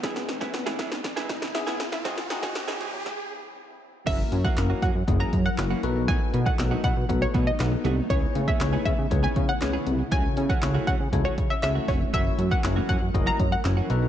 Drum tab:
CC |----------------|----------------|x---------------|----------------|
HH |x-x-x-x-x-x-x-x-|x-xxx-x---------|x-x-x-x-x-x-x-x-|x-x-x-x-x-x-x-x-|
CP |----------------|----------------|----x-------x---|----x-------x---|
SD |oooooooooooooooo|oooooo--o-------|----o-------o---|----o-------o---|
BD |o--o--o-o-o-----|o--o----o-------|o--o--o-o-o-----|o--o--o-o-o-----|

CC |----------------|----------------|----------------|
HH |x-x-x-x-x-x-x-x-|x-xxx-x-x-x-x-o-|x-x-x-x-x-x-x-x-|
CP |----x-------x---|----x-------x---|----x-------x---|
SD |----o-------o---|----o-------o---|----o-------o---|
BD |o--o--o-o-o-----|o--o--o-o-o---o-|o--o--o-o-o-----|